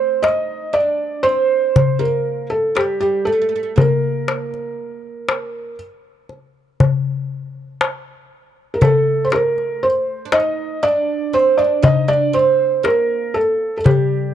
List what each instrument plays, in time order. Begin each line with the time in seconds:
Already playing: oud C4, felt piano C5
0.23 oud D#4, felt piano D#5, darbuka tek
0.73 oud D4, felt piano D5
1.23 oud C4, felt piano C5, darbuka ka
1.76 darbuka dum
1.99 oud A#3, felt piano A#4
2.50 felt piano A4
2.75 oud G3, felt piano G4, darbuka tek
3.00 oud G3, felt piano G4
3.25 oud A3, felt piano A4
3.33 oud A3
3.42 oud A3
3.49 oud A3
3.56 oud A3
3.63 oud A3
3.76 oud A#3, felt piano A#4, darbuka dum
4.28 darbuka tek
4.54 darbuka ka
5.29 darbuka tek
6.29 darbuka ka
6.80 darbuka dum
7.81 darbuka tek
8.74 felt piano A#4
8.81 oud A3, felt piano A4, darbuka dum
9.25 felt piano C5
9.32 felt piano A#4, darbuka tek
9.58 darbuka ka
9.83 felt piano C5
10.25 oud D4
10.32 oud D#4, felt piano D#5, darbuka tek
10.83 oud D4, felt piano D5
11.33 oud C4, felt piano C5, darbuka ka
11.58 oud D4, felt piano D5
11.83 oud D#4, felt piano D#5, darbuka dum
12.08 oud D4, felt piano D5
12.33 oud C4, felt piano C5
12.83 oud A#3, felt piano A#4, darbuka tek
13.34 felt piano A4
13.77 felt piano A4
13.84 oud G3, felt piano G4, darbuka dum